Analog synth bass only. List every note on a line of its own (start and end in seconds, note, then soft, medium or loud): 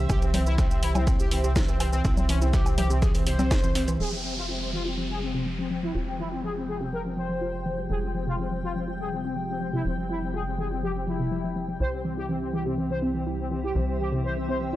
0.10 2.02 C2 medium
2.05 3.97 C2 medium
4.00 5.93 F1 medium
5.95 7.88 F1 medium
7.90 9.83 F1 medium
9.85 11.78 F1 medium
11.80 13.73 C2 medium
13.75 14.76 C2 medium